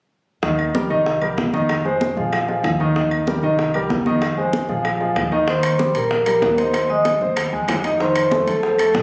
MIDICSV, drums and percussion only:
0, 0, Header, 1, 2, 480
1, 0, Start_track
1, 0, Key_signature, -3, "major"
1, 0, Tempo, 315126
1, 663, Time_signature, 4, 2, 24, 8
1, 13745, End_track
2, 0, Start_track
2, 0, Title_t, "Drums"
2, 652, Note_on_c, 9, 60, 70
2, 656, Note_on_c, 9, 63, 29
2, 804, Note_off_c, 9, 60, 0
2, 809, Note_off_c, 9, 63, 0
2, 895, Note_on_c, 9, 75, 53
2, 899, Note_on_c, 9, 63, 32
2, 1048, Note_off_c, 9, 75, 0
2, 1051, Note_off_c, 9, 63, 0
2, 1138, Note_on_c, 9, 60, 54
2, 1138, Note_on_c, 9, 63, 79
2, 1290, Note_off_c, 9, 60, 0
2, 1291, Note_off_c, 9, 63, 0
2, 1379, Note_on_c, 9, 63, 31
2, 1531, Note_off_c, 9, 63, 0
2, 1621, Note_on_c, 9, 60, 66
2, 1621, Note_on_c, 9, 63, 33
2, 1773, Note_off_c, 9, 60, 0
2, 1773, Note_off_c, 9, 63, 0
2, 1852, Note_on_c, 9, 75, 56
2, 1860, Note_on_c, 9, 63, 32
2, 2004, Note_off_c, 9, 75, 0
2, 2012, Note_off_c, 9, 63, 0
2, 2097, Note_on_c, 9, 63, 75
2, 2101, Note_on_c, 9, 60, 59
2, 2101, Note_on_c, 9, 61, 73
2, 2250, Note_off_c, 9, 63, 0
2, 2254, Note_off_c, 9, 60, 0
2, 2254, Note_off_c, 9, 61, 0
2, 2340, Note_on_c, 9, 63, 78
2, 2492, Note_off_c, 9, 63, 0
2, 2577, Note_on_c, 9, 75, 62
2, 2582, Note_on_c, 9, 60, 65
2, 2582, Note_on_c, 9, 63, 30
2, 2729, Note_off_c, 9, 75, 0
2, 2734, Note_off_c, 9, 60, 0
2, 2734, Note_off_c, 9, 63, 0
2, 2824, Note_on_c, 9, 63, 29
2, 2976, Note_off_c, 9, 63, 0
2, 3061, Note_on_c, 9, 63, 79
2, 3068, Note_on_c, 9, 60, 57
2, 3214, Note_off_c, 9, 63, 0
2, 3220, Note_off_c, 9, 60, 0
2, 3308, Note_on_c, 9, 63, 29
2, 3309, Note_on_c, 9, 60, 28
2, 3460, Note_off_c, 9, 63, 0
2, 3461, Note_off_c, 9, 60, 0
2, 3542, Note_on_c, 9, 75, 65
2, 3543, Note_on_c, 9, 63, 30
2, 3549, Note_on_c, 9, 60, 65
2, 3695, Note_off_c, 9, 63, 0
2, 3695, Note_off_c, 9, 75, 0
2, 3701, Note_off_c, 9, 60, 0
2, 3781, Note_on_c, 9, 63, 35
2, 3790, Note_on_c, 9, 60, 30
2, 3934, Note_off_c, 9, 63, 0
2, 3942, Note_off_c, 9, 60, 0
2, 4024, Note_on_c, 9, 63, 29
2, 4025, Note_on_c, 9, 75, 53
2, 4026, Note_on_c, 9, 60, 62
2, 4026, Note_on_c, 9, 61, 78
2, 4176, Note_off_c, 9, 63, 0
2, 4178, Note_off_c, 9, 60, 0
2, 4178, Note_off_c, 9, 61, 0
2, 4178, Note_off_c, 9, 75, 0
2, 4263, Note_on_c, 9, 63, 31
2, 4268, Note_on_c, 9, 60, 29
2, 4415, Note_off_c, 9, 63, 0
2, 4420, Note_off_c, 9, 60, 0
2, 4502, Note_on_c, 9, 63, 33
2, 4510, Note_on_c, 9, 60, 62
2, 4654, Note_off_c, 9, 63, 0
2, 4663, Note_off_c, 9, 60, 0
2, 4742, Note_on_c, 9, 75, 62
2, 4745, Note_on_c, 9, 63, 32
2, 4895, Note_off_c, 9, 75, 0
2, 4898, Note_off_c, 9, 63, 0
2, 4985, Note_on_c, 9, 63, 76
2, 4990, Note_on_c, 9, 60, 58
2, 5137, Note_off_c, 9, 63, 0
2, 5142, Note_off_c, 9, 60, 0
2, 5222, Note_on_c, 9, 63, 32
2, 5375, Note_off_c, 9, 63, 0
2, 5463, Note_on_c, 9, 63, 34
2, 5466, Note_on_c, 9, 60, 67
2, 5615, Note_off_c, 9, 63, 0
2, 5618, Note_off_c, 9, 60, 0
2, 5700, Note_on_c, 9, 75, 54
2, 5701, Note_on_c, 9, 63, 30
2, 5853, Note_off_c, 9, 75, 0
2, 5854, Note_off_c, 9, 63, 0
2, 5943, Note_on_c, 9, 63, 70
2, 5944, Note_on_c, 9, 60, 62
2, 5944, Note_on_c, 9, 61, 68
2, 6095, Note_off_c, 9, 63, 0
2, 6097, Note_off_c, 9, 60, 0
2, 6097, Note_off_c, 9, 61, 0
2, 6184, Note_on_c, 9, 63, 75
2, 6336, Note_off_c, 9, 63, 0
2, 6421, Note_on_c, 9, 63, 29
2, 6423, Note_on_c, 9, 75, 54
2, 6424, Note_on_c, 9, 60, 66
2, 6574, Note_off_c, 9, 63, 0
2, 6576, Note_off_c, 9, 75, 0
2, 6577, Note_off_c, 9, 60, 0
2, 6664, Note_on_c, 9, 63, 31
2, 6817, Note_off_c, 9, 63, 0
2, 6903, Note_on_c, 9, 63, 85
2, 6907, Note_on_c, 9, 60, 53
2, 7055, Note_off_c, 9, 63, 0
2, 7059, Note_off_c, 9, 60, 0
2, 7142, Note_on_c, 9, 63, 29
2, 7145, Note_on_c, 9, 60, 30
2, 7294, Note_off_c, 9, 63, 0
2, 7298, Note_off_c, 9, 60, 0
2, 7385, Note_on_c, 9, 63, 35
2, 7386, Note_on_c, 9, 60, 63
2, 7386, Note_on_c, 9, 75, 62
2, 7538, Note_off_c, 9, 60, 0
2, 7538, Note_off_c, 9, 63, 0
2, 7538, Note_off_c, 9, 75, 0
2, 7622, Note_on_c, 9, 63, 33
2, 7626, Note_on_c, 9, 60, 31
2, 7774, Note_off_c, 9, 63, 0
2, 7778, Note_off_c, 9, 60, 0
2, 7858, Note_on_c, 9, 63, 35
2, 7862, Note_on_c, 9, 75, 54
2, 7864, Note_on_c, 9, 60, 59
2, 7864, Note_on_c, 9, 61, 68
2, 8011, Note_off_c, 9, 63, 0
2, 8015, Note_off_c, 9, 75, 0
2, 8016, Note_off_c, 9, 60, 0
2, 8016, Note_off_c, 9, 61, 0
2, 8097, Note_on_c, 9, 63, 29
2, 8106, Note_on_c, 9, 60, 31
2, 8250, Note_off_c, 9, 63, 0
2, 8258, Note_off_c, 9, 60, 0
2, 8340, Note_on_c, 9, 63, 30
2, 8342, Note_on_c, 9, 60, 70
2, 8492, Note_off_c, 9, 63, 0
2, 8494, Note_off_c, 9, 60, 0
2, 8578, Note_on_c, 9, 65, 84
2, 8581, Note_on_c, 9, 75, 58
2, 8583, Note_on_c, 9, 63, 32
2, 8730, Note_off_c, 9, 65, 0
2, 8734, Note_off_c, 9, 75, 0
2, 8736, Note_off_c, 9, 63, 0
2, 8819, Note_on_c, 9, 66, 56
2, 8823, Note_on_c, 9, 60, 57
2, 8823, Note_on_c, 9, 63, 85
2, 8971, Note_off_c, 9, 66, 0
2, 8975, Note_off_c, 9, 63, 0
2, 8976, Note_off_c, 9, 60, 0
2, 9061, Note_on_c, 9, 65, 61
2, 9063, Note_on_c, 9, 63, 29
2, 9213, Note_off_c, 9, 65, 0
2, 9216, Note_off_c, 9, 63, 0
2, 9302, Note_on_c, 9, 63, 29
2, 9304, Note_on_c, 9, 60, 68
2, 9454, Note_off_c, 9, 63, 0
2, 9457, Note_off_c, 9, 60, 0
2, 9535, Note_on_c, 9, 75, 55
2, 9540, Note_on_c, 9, 65, 75
2, 9547, Note_on_c, 9, 63, 35
2, 9687, Note_off_c, 9, 75, 0
2, 9692, Note_off_c, 9, 65, 0
2, 9699, Note_off_c, 9, 63, 0
2, 9781, Note_on_c, 9, 60, 66
2, 9781, Note_on_c, 9, 61, 78
2, 9783, Note_on_c, 9, 63, 78
2, 9786, Note_on_c, 9, 66, 71
2, 9934, Note_off_c, 9, 60, 0
2, 9934, Note_off_c, 9, 61, 0
2, 9935, Note_off_c, 9, 63, 0
2, 9939, Note_off_c, 9, 66, 0
2, 10020, Note_on_c, 9, 63, 71
2, 10025, Note_on_c, 9, 65, 63
2, 10172, Note_off_c, 9, 63, 0
2, 10178, Note_off_c, 9, 65, 0
2, 10259, Note_on_c, 9, 63, 32
2, 10259, Note_on_c, 9, 75, 58
2, 10261, Note_on_c, 9, 60, 61
2, 10268, Note_on_c, 9, 65, 85
2, 10411, Note_off_c, 9, 63, 0
2, 10411, Note_off_c, 9, 75, 0
2, 10414, Note_off_c, 9, 60, 0
2, 10420, Note_off_c, 9, 65, 0
2, 10504, Note_on_c, 9, 63, 31
2, 10656, Note_off_c, 9, 63, 0
2, 10740, Note_on_c, 9, 63, 81
2, 10741, Note_on_c, 9, 65, 62
2, 10741, Note_on_c, 9, 66, 52
2, 10742, Note_on_c, 9, 60, 58
2, 10892, Note_off_c, 9, 63, 0
2, 10893, Note_off_c, 9, 65, 0
2, 10893, Note_off_c, 9, 66, 0
2, 10895, Note_off_c, 9, 60, 0
2, 10984, Note_on_c, 9, 63, 32
2, 10987, Note_on_c, 9, 60, 30
2, 11136, Note_off_c, 9, 63, 0
2, 11139, Note_off_c, 9, 60, 0
2, 11216, Note_on_c, 9, 75, 66
2, 11221, Note_on_c, 9, 63, 35
2, 11222, Note_on_c, 9, 65, 90
2, 11226, Note_on_c, 9, 60, 67
2, 11368, Note_off_c, 9, 75, 0
2, 11373, Note_off_c, 9, 63, 0
2, 11374, Note_off_c, 9, 65, 0
2, 11379, Note_off_c, 9, 60, 0
2, 11465, Note_on_c, 9, 63, 34
2, 11472, Note_on_c, 9, 60, 33
2, 11617, Note_off_c, 9, 63, 0
2, 11624, Note_off_c, 9, 60, 0
2, 11697, Note_on_c, 9, 75, 54
2, 11706, Note_on_c, 9, 63, 36
2, 11706, Note_on_c, 9, 65, 78
2, 11706, Note_on_c, 9, 66, 65
2, 11711, Note_on_c, 9, 60, 68
2, 11711, Note_on_c, 9, 61, 75
2, 11849, Note_off_c, 9, 75, 0
2, 11858, Note_off_c, 9, 63, 0
2, 11858, Note_off_c, 9, 65, 0
2, 11858, Note_off_c, 9, 66, 0
2, 11864, Note_off_c, 9, 60, 0
2, 11864, Note_off_c, 9, 61, 0
2, 11945, Note_on_c, 9, 65, 62
2, 11949, Note_on_c, 9, 60, 30
2, 11951, Note_on_c, 9, 63, 32
2, 12097, Note_off_c, 9, 65, 0
2, 12101, Note_off_c, 9, 60, 0
2, 12103, Note_off_c, 9, 63, 0
2, 12187, Note_on_c, 9, 63, 30
2, 12193, Note_on_c, 9, 60, 68
2, 12339, Note_off_c, 9, 63, 0
2, 12345, Note_off_c, 9, 60, 0
2, 12421, Note_on_c, 9, 75, 69
2, 12423, Note_on_c, 9, 65, 80
2, 12426, Note_on_c, 9, 63, 30
2, 12573, Note_off_c, 9, 75, 0
2, 12575, Note_off_c, 9, 65, 0
2, 12578, Note_off_c, 9, 63, 0
2, 12660, Note_on_c, 9, 66, 54
2, 12664, Note_on_c, 9, 63, 80
2, 12673, Note_on_c, 9, 60, 64
2, 12812, Note_off_c, 9, 66, 0
2, 12817, Note_off_c, 9, 63, 0
2, 12825, Note_off_c, 9, 60, 0
2, 12910, Note_on_c, 9, 63, 34
2, 12910, Note_on_c, 9, 65, 58
2, 13062, Note_off_c, 9, 63, 0
2, 13062, Note_off_c, 9, 65, 0
2, 13146, Note_on_c, 9, 63, 34
2, 13149, Note_on_c, 9, 60, 71
2, 13298, Note_off_c, 9, 63, 0
2, 13301, Note_off_c, 9, 60, 0
2, 13381, Note_on_c, 9, 75, 58
2, 13388, Note_on_c, 9, 63, 30
2, 13394, Note_on_c, 9, 65, 77
2, 13533, Note_off_c, 9, 75, 0
2, 13540, Note_off_c, 9, 63, 0
2, 13546, Note_off_c, 9, 65, 0
2, 13626, Note_on_c, 9, 63, 85
2, 13629, Note_on_c, 9, 60, 69
2, 13629, Note_on_c, 9, 61, 84
2, 13629, Note_on_c, 9, 66, 71
2, 13745, Note_off_c, 9, 60, 0
2, 13745, Note_off_c, 9, 61, 0
2, 13745, Note_off_c, 9, 63, 0
2, 13745, Note_off_c, 9, 66, 0
2, 13745, End_track
0, 0, End_of_file